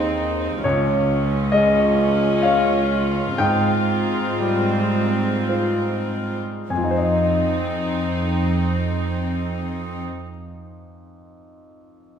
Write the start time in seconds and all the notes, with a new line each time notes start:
Already playing: D#2 G#3 C4 D#4 C5 G#5
0.63 C#2 C#4 F4 C#5
1.52 G#3 D#5
2.43 F4 C#5 F5
3.38 G#2 C4 G5
4.40 G3
5.49 F4 C5
6.69 F2 C4 D#4 G#5
6.77 F3
6.84 D#4
6.91 C5
6.98 D#5